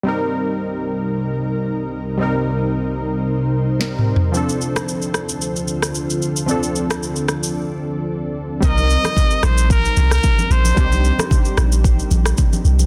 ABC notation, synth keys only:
X:1
M:4/4
L:1/8
Q:"Swing 16ths" 1/4=112
K:Cdor
V:1 name="Synth keys"
[G,CEB]8 | [G,CEB]6 [G,CEB]2 | [F,CDA]8 | [F,CDA]8 |
[G,CEB]8 | [G,CDEG]8 |]